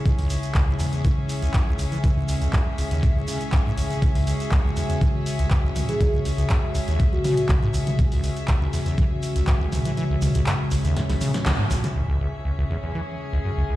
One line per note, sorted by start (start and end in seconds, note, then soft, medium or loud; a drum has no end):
0.00 11.92 C#3 medium
0.00 11.92 G#3 medium
0.00 11.94 C#4 medium
0.00 4.01 E4 medium
0.00 11.95 G#4 medium
0.00 13.76 E5 medium
0.05 0.13 C#2 medium
0.05 kick loud
0.05 closed hi-hat soft
0.05 shekere soft
0.19 0.28 C#2 loud
0.19 open hi-hat medium
0.30 0.37 C#2 medium
0.30 open hi-hat loud
0.30 shekere loud
0.43 closed hi-hat medium
0.43 shekere medium
0.54 0.62 C#2 medium
0.54 kick loud
0.54 clap loud
0.54 closed hi-hat soft
0.54 shekere soft
0.68 0.75 C#2 medium
0.79 0.87 E2 loud
0.79 open hi-hat loud
0.79 shekere medium
0.93 1.03 E2 medium
0.93 closed hi-hat medium
0.93 shekere soft
1.04 1.12 E3 loud
1.04 kick loud
1.04 closed hi-hat soft
1.04 shekere soft
1.29 open hi-hat loud
1.29 shekere loud
1.42 1.49 C#2 loud
1.42 closed hi-hat medium
1.42 shekere medium
1.54 1.61 F#2 medium
1.54 kick loud
1.54 clap loud
1.54 closed hi-hat medium
1.54 shekere soft
1.67 1.74 C#2 loud
1.79 1.86 C#2 medium
1.79 open hi-hat loud
1.79 shekere loud
1.92 1.99 E3 medium
1.92 closed hi-hat medium
1.92 shekere medium
2.04 2.11 E3 loud
2.04 kick loud
2.04 closed hi-hat soft
2.04 shekere soft
2.17 2.23 C#2 medium
2.28 2.36 C#2 medium
2.28 open hi-hat loud
2.28 shekere loud
2.42 2.48 C#2 loud
2.42 closed hi-hat medium
2.42 shekere medium
2.53 2.61 F#2 medium
2.53 kick loud
2.53 clap loud
2.53 closed hi-hat soft
2.53 shekere soft
2.78 2.83 C#2 loud
2.78 open hi-hat loud
2.78 shekere medium
2.91 3.05 D#2 loud
2.91 closed hi-hat medium
2.91 shekere medium
3.03 3.07 C#3 loud
3.03 kick loud
3.03 closed hi-hat medium
3.03 shekere soft
3.16 3.23 C#2 medium
3.28 3.39 C#3 loud
3.28 open hi-hat loud
3.28 shekere loud
3.40 closed hi-hat medium
3.40 shekere medium
3.52 3.60 C#2 loud
3.52 kick loud
3.52 clap loud
3.52 closed hi-hat soft
3.52 shekere soft
3.66 3.72 G#2 loud
3.77 3.82 C#2 loud
3.77 open hi-hat loud
3.77 shekere medium
3.90 3.94 C#3 medium
3.90 closed hi-hat medium
3.90 shekere medium
4.02 4.09 C#2 medium
4.02 11.94 F#4 medium
4.02 kick loud
4.02 closed hi-hat soft
4.02 shekere soft
4.15 4.25 C#2 loud
4.15 open hi-hat medium
4.27 4.34 C#2 medium
4.27 open hi-hat loud
4.27 shekere loud
4.40 closed hi-hat medium
4.40 shekere medium
4.51 4.59 C#2 medium
4.51 kick loud
4.51 clap loud
4.51 closed hi-hat soft
4.51 shekere soft
4.65 4.71 C#2 loud
4.76 4.84 E2 loud
4.76 open hi-hat loud
4.76 shekere medium
4.90 4.99 E2 medium
4.90 closed hi-hat medium
4.90 shekere medium
5.01 5.08 E3 loud
5.01 kick loud
5.01 closed hi-hat soft
5.01 shekere soft
5.26 open hi-hat loud
5.26 shekere medium
5.39 5.46 C#2 loud
5.39 closed hi-hat medium
5.39 shekere soft
5.50 5.58 F#2 medium
5.50 kick loud
5.50 clap loud
5.50 closed hi-hat medium
5.50 shekere soft
5.64 5.70 C#2 loud
5.76 5.83 C#2 medium
5.76 mid tom medium
5.76 open hi-hat loud
5.76 shekere loud
5.88 5.95 E3 medium
5.88 6.00 G#4 medium
5.88 closed hi-hat medium
5.88 shekere soft
6.00 6.08 E3 loud
6.00 kick loud
6.00 closed hi-hat medium
6.00 shekere soft
6.13 6.20 C#2 medium
6.25 6.32 C#2 medium
6.25 open hi-hat loud
6.25 shekere medium
6.38 6.45 C#2 loud
6.38 closed hi-hat medium
6.38 shekere soft
6.50 6.57 F#2 medium
6.50 kick loud
6.50 clap loud
6.50 closed hi-hat medium
6.50 shekere soft
6.75 6.79 C#2 loud
6.75 open hi-hat loud
6.75 shekere medium
6.88 7.01 D#2 loud
6.88 closed hi-hat medium
6.88 shekere medium
7.00 7.04 C#3 loud
7.00 kick loud
7.00 closed hi-hat medium
7.00 shekere soft
7.13 7.19 C#2 medium
7.13 7.20 F#4 medium
7.24 7.35 C#3 loud
7.24 7.33 F#4 medium
7.24 mid tom medium
7.24 open hi-hat loud
7.24 shekere medium
7.37 closed hi-hat medium
7.37 shekere soft
7.49 7.56 C#2 loud
7.49 kick loud
7.49 clap loud
7.49 closed hi-hat medium
7.49 mid tom loud
7.49 shekere soft
7.62 7.69 G#2 loud
7.74 7.78 C#2 loud
7.74 open hi-hat loud
7.74 shekere medium
7.87 7.91 C#3 medium
7.87 closed hi-hat medium
7.87 mid tom medium
7.87 shekere soft
7.99 8.06 C#2 medium
7.99 kick loud
7.99 closed hi-hat medium
7.99 shekere soft
8.12 8.21 C#2 loud
8.12 open hi-hat medium
8.23 8.31 C#2 medium
8.23 open hi-hat loud
8.23 shekere medium
8.36 closed hi-hat medium
8.36 shekere medium
8.48 8.56 C#2 medium
8.48 kick loud
8.48 clap loud
8.48 closed hi-hat medium
8.48 shekere soft
8.61 8.68 C#2 loud
8.73 8.80 E2 loud
8.73 open hi-hat loud
8.73 shekere medium
8.86 8.96 E2 medium
8.86 closed hi-hat medium
8.86 shekere medium
8.98 9.05 E3 loud
8.98 kick loud
8.98 closed hi-hat medium
8.98 shekere soft
9.23 open hi-hat loud
9.23 shekere medium
9.36 9.42 C#2 loud
9.36 closed hi-hat medium
9.36 shekere medium
9.47 9.55 F#2 medium
9.47 kick loud
9.47 clap loud
9.47 closed hi-hat medium
9.47 shekere soft
9.61 9.67 C#2 loud
9.72 9.80 C#2 medium
9.72 mid tom medium
9.72 open hi-hat loud
9.72 shekere loud
9.85 9.92 E3 medium
9.85 closed hi-hat medium
9.85 shekere soft
9.97 10.04 E3 loud
9.97 closed hi-hat medium
9.97 shekere soft
10.10 10.17 C#2 medium
10.22 10.29 C#2 medium
10.22 mid tom medium
10.22 open hi-hat loud
10.22 shekere medium
10.34 10.41 C#2 loud
10.34 closed hi-hat medium
10.34 shekere medium
10.46 10.54 F#2 medium
10.46 clap loud
10.46 closed hi-hat medium
10.46 shekere soft
10.71 10.76 C#2 loud
10.71 open hi-hat loud
10.71 shekere medium
10.84 10.98 D#2 loud
10.84 closed hi-hat medium
10.84 shekere soft
10.96 11.01 C#3 loud
10.96 snare medium
10.96 closed hi-hat medium
10.96 shekere soft
11.09 11.16 C#2 medium
11.09 snare medium
11.09 open hi-hat medium
11.21 11.32 C#3 loud
11.21 mid tom medium
11.21 open hi-hat loud
11.21 shekere medium
11.34 snare medium
11.34 closed hi-hat medium
11.34 shekere soft
11.46 11.53 C#2 loud
11.46 snare medium
11.46 clap loud
11.46 closed hi-hat medium
11.46 mid tom loud
11.46 shekere soft
11.59 11.65 G#2 loud
11.70 11.75 C#2 loud
11.70 mid tom loud
11.70 open hi-hat loud
11.70 shekere medium
11.84 11.88 C#3 medium
11.84 closed hi-hat medium
11.84 mid tom medium
11.84 shekere soft
11.96 12.03 C#2 medium
11.96 13.76 C#3 medium
11.96 13.76 G#3 medium
11.96 13.76 C#4 medium
11.96 13.76 E4 medium
12.09 12.18 C#2 loud
12.20 12.28 C#2 medium
12.20 13.76 G#4 medium
12.45 12.52 C#2 medium
12.58 12.65 C#2 loud
12.70 12.77 E2 loud
12.83 12.93 E2 medium
12.95 13.02 E3 loud
13.33 13.39 C#2 medium
13.44 13.52 F#2 medium
13.57 13.64 C#2 loud
13.69 13.76 C#2 medium